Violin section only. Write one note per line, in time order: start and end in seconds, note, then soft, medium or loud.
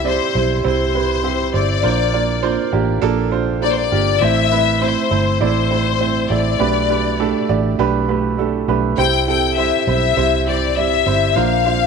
0.07 0.61 C5 medium
0.66 1.51 C5 medium
1.55 2.69 D5 medium
3.63 3.70 D5 medium
3.70 3.78 C5 medium
3.78 4.22 D5 medium
4.22 4.82 E5 medium
4.82 5.41 C5 medium
5.43 6.27 C5 medium
6.31 7.50 D5 medium
8.98 9.26 G5 loud
9.28 9.56 G5 medium
9.58 9.85 E5 medium
9.88 10.43 E5 medium
10.48 10.77 D5 medium
10.78 11.37 E5 medium
11.37 11.87 F5 medium